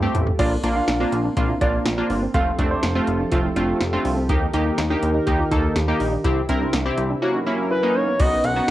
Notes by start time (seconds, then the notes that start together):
Already playing: G3 F4 G4 A4
0.02 A3 C4 G4
0.15 A1, closed hi-hat, floor tom
0.27 floor tom
0.39 A#1 A#3 C4 D4 F4 D5, kick, closed hi-hat, crash
0.63 A#1 A#3 D4 F4, closed hi-hat
0.76 D4 F5
0.88 A#1 D4, snare, closed hi-hat
1.00 A#3 C4 D4 F4
1.12 A#1, closed hi-hat
1.25 D4
1.37 A#1 A#3 D4 F4, kick, closed hi-hat
1.49 E4
1.61 A#1 A#3 D4 F4 D5, kick, closed hi-hat
1.86 A#1 F4, snare, closed hi-hat
1.98 A#3 D4 F4
2.10 G1 D4, open hi-hat
2.22 C4
2.34 F1 F3 A3 C4 F4 G4 A4 F5, kick, closed hi-hat
2.59 F1 A3 C4 D4, kick, closed hi-hat
2.71 D4 C5
2.83 F1 D4, snare, closed hi-hat
2.95 A3 C4 F4
3.07 F1, closed hi-hat
3.20 D4
3.32 F1 A3 C4 F4, kick, closed hi-hat
3.44 E4
3.56 F1 A3 C4 D4 F4, closed hi-hat
3.81 F1 F4, snare, closed hi-hat
3.93 A3 C4 D4 F4
4.05 C2 D4, open hi-hat
4.17 C4
4.29 D#2 D#3 A#3 D#4 G4 A#4, kick, closed hi-hat
4.54 D#2 A#3 D#4 G4, closed hi-hat
4.66 D#4
4.78 D#2 D#4, snare, closed hi-hat
4.90 A#3 D4 D#4 G4
5.03 D#2, closed hi-hat
5.14 D#4
5.26 D#2 A#3 D#4 G4, kick, closed hi-hat
5.39 F4
5.51 D#2 A#3 D#4 A4, kick, closed hi-hat
5.75 D#2 G4, snare, closed hi-hat
5.88 A#3 D#4 G4
6.00 A#1 D#4, open hi-hat
6.12 D4
6.24 C2 C3 C4 E4 G4, kick, closed hi-hat
6.49 C2 C4 D4 E4 A#4, kick, closed hi-hat
6.61 D4
6.73 C2 D4, snare, closed hi-hat
6.85 C4 E4 G4
6.98 C2, closed hi-hat
7.10 D4
7.22 F#3 A#3 C#4 E4 F#4 A#4
7.34 D#4
7.46 A#3 C#4 E4
7.71 E4 B4
7.83 A#3 C#4 D#4
7.95 C#4 C#5
8.07 B3
8.19 B1 B3 C#4 D#4 F#4 D#5, kick, closed hi-hat, crash
8.44 B1 F#5, closed hi-hat
8.56 B3 D#4 F#4